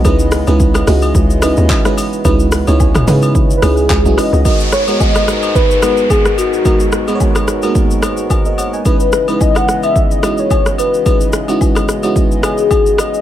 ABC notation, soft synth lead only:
X:1
M:4/4
L:1/16
Q:"Swing 16ths" 1/4=109
K:G#m
V:1 name="Soft synth lead"
z16 | z8 z3/2 B/2 G4 d2- | d2 c2 d4 B2 B2 G2 F2- | F4 z12 |
B4 d f2 e2 d2 c3 B2- | B2 z8 G4 d2 |]